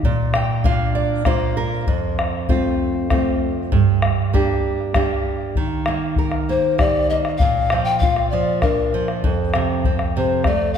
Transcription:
0.03 A#2, bombo low
0.34 G5, bombo rim
0.64 A#3 D4 F4 F5, bombo low
0.95 D5
1.25 A#3 D4 F4 C5, bombo rim, bombo low
1.57 A#4
1.87 F2, bombo low
2.19 bombo rim
2.48 A3 C4 F4, bombo low
3.10 A3 C4 F4, bombo rim, bombo low
3.72 G2, bombo low
4.02 bombo rim
4.33 A#3 D4 G4, bombo rim, bombo low
4.50 bombo rim
4.81 bombo rim
4.94 A#3 D4 G4, bombo rim, bombo low
5.10 bombo rim
5.26 bombo rim
5.55 D#3, bombo low
5.86 A#3, bombo rim
6.16 A#4, bombo low
6.32 bombo rim
6.49 A#3 C5
6.78 G4 D5, bombo rim, bombo low
7.09 A#3 D#5, bombo rim
7.25 bombo rim
7.38 A#2 F5, bombo low
7.70 F3, bombo rim
7.84 G5
7.99 F4 F5, bombo low
8.16 bombo rim
8.30 F3 D5
8.62 D4 A#4, bombo rim, bombo low
8.93 F3, bombo rim
9.08 bombo rim
9.23 F2, bombo low
9.54 C3, bombo rim
9.84 C4, bombo low
9.99 bombo rim
10.17 C3 C5
10.44 A3 D5, bombo rim, bombo low
10.74 F5

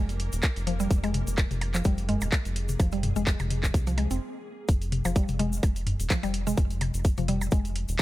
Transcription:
Already playing: F1 A#3 A#4
0.09 closed hi-hat, shaker
0.20 closed hi-hat
0.33 D#1, closed hi-hat, shaker
0.43 kick, clap, closed hi-hat, percussion blips, shaker
0.56 F1, closed hi-hat, shaker
0.67 F3, closed hi-hat
0.80 G3, closed hi-hat, shaker
0.91 F1 G#4, kick, closed hi-hat, shaker
1.04 G#3, closed hi-hat, percussion blips, shaker
1.14 closed hi-hat, high tom
1.27 F1, closed hi-hat, shaker
1.38 kick, clap, closed hi-hat, shaker
1.51 F1, closed hi-hat, high tom, shaker
1.61 closed hi-hat, percussion blips
1.74 F3, clap, shaker
1.84 F1 G3, kick, closed hi-hat, shaker
1.98 closed hi-hat, shaker
2.09 G#3, closed hi-hat, mid tom
2.21 D#1, closed hi-hat, percussion blips, shaker
2.32 kick, clap, closed hi-hat, shaker
2.45 F1, closed hi-hat, shaker
2.56 closed hi-hat
2.69 closed hi-hat, high tom, shaker
2.80 F1 F3, kick, closed hi-hat, percussion blips, shaker
2.92 G3, closed hi-hat, shaker
3.03 closed hi-hat, mid tom, high tom
3.16 F1 G#3, closed hi-hat, shaker
3.27 kick, clap, closed hi-hat, shaker
3.40 F1, closed hi-hat, high tom, percussion blips, shaker
3.50 closed hi-hat, high tom
3.64 kick, clap, closed hi-hat, shaker
3.74 C2, kick, closed hi-hat, shaker
3.87 F3, closed hi-hat, shaker
3.98 G#3, closed hi-hat, percussion blips
4.11 F1 C4, closed hi-hat, shaker
4.68 F1, kick, closed hi-hat, shaker
4.82 closed hi-hat, shaker
4.92 closed hi-hat, high tom
5.05 F1 F3, closed hi-hat, percussion blips, shaker
5.16 G3, kick, closed hi-hat, shaker
5.28 F1, closed hi-hat, high tom, shaker
5.39 G#3, closed hi-hat, high tom
5.53 shaker
5.63 F1, kick, closed hi-hat, percussion blips, shaker
5.76 closed hi-hat, shaker
5.87 closed hi-hat, mid tom
6.00 D#1, closed hi-hat, shaker
6.10 F3, kick, clap, closed hi-hat, shaker
6.23 F1 G3, closed hi-hat, percussion blips, shaker
6.34 closed hi-hat
6.47 G#3, closed hi-hat, high tom, shaker
6.57 F1, kick, closed hi-hat, shaker
6.71 closed hi-hat, shaker
6.81 closed hi-hat, high tom, percussion blips
6.94 F1, closed hi-hat, shaker
7.05 kick, closed hi-hat, shaker
7.17 F1 F3, closed hi-hat, high tom, shaker
7.28 G3, closed hi-hat, high tom
7.41 percussion blips, shaker
7.51 F1 G#3, kick, closed hi-hat, shaker
7.65 closed hi-hat, shaker
7.76 closed hi-hat
7.88 D#1, closed hi-hat, shaker

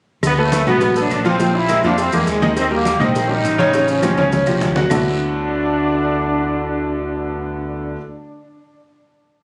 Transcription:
0.23 D2 D3 B3, cowbell, high conga, long guiro, claves, maracas
0.38 C#3 A3 A4 B4, high conga
0.42 A3
0.52 A3 A4 B4, cowbell, high conga, short guiro, maracas
0.67 A1 D3 F#3 B3 F#4 F#5, high conga, low conga, short guiro, claves, maracas
0.81 cowbell, high conga, low conga, long guiro, maracas
0.96 F#3 A3 D4 A4 B4, high conga, maracas
1.10 A#1 F#3 D4, cowbell, high conga, short guiro, claves, maracas
1.25 F3 C4 F4 F5, cowbell, high conga, short guiro, maracas
1.39 F3 F4 F5, cowbell, high conga, long guiro, maracas
1.55 G3 E4, high conga
1.69 G#3 G#4 A#4, cowbell, high conga, short guiro, claves, maracas
1.84 F2 F3 D4 F4 F5, short guiro, maracas
1.98 F3 C4, cowbell, long guiro, maracas
2.12 E2 D3 G#3 A#3 G#4 A#4, high conga, claves, maracas
2.27 D#2 C3 G#3, cowbell, high conga, short guiro, maracas
2.42 D#3 D#4 D#5, high conga, short guiro, maracas
2.57 D#3 C4, cowbell, high conga, long guiro, claves, maracas
2.71 D3 G3 A#3 G4 A#4, high conga
2.85 G3 G4 A#4, cowbell, high conga, short guiro, maracas
2.99 A#1 D#3 C4 D#4 D#5, high conga, low conga, short guiro, claves, maracas
3.15 cowbell, high conga, long guiro, maracas
3.29 G3 D#4 G4 A#4, high conga
3.44 A1, cowbell, high conga, short guiro, claves, maracas
3.58 C#3 G3 C#4 D#4 C#5, cowbell, high conga, short guiro, maracas
3.73 C#3 C#4 C#5, cowbell, high conga, long guiro, maracas
3.88 F3 C#4, high conga, maracas
4.01 F3 F4 G4, cowbell, high bongo, high conga, short guiro, claves, maracas
4.17 C#2 C#3 C#4 C#5, low bongo, short guiro, maracas
4.32 cowbell, low bongo, high conga, long guiro, maracas
4.46 C2 F3 F4 G4, high conga, claves, maracas
4.61 D2, cowbell, low bongo, low conga, short guiro, maracas
4.76 F#3 F#4 F#5, low bongo, low conga, short guiro, maracas
4.90 D2 D3 A3 B3 D4 E4 F#4, low bongo, low conga, long guiro, claves, maracas

